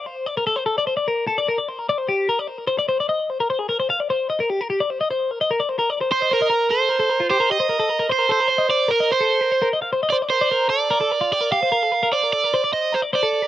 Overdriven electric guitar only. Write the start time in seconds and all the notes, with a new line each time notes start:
6.12 C5
6.33 A#4
6.70 C5
7.30 C5
7.51 D#5
8.12 C5
8.32 C5
8.70 D5
8.91 A#4
9.12 C5
10.10 D5
10.30 C5
10.70 D5
11.32 D5
11.52 F5
12.13 D5
12.33 D5
12.73 D#5
12.94 C5
13.15 D5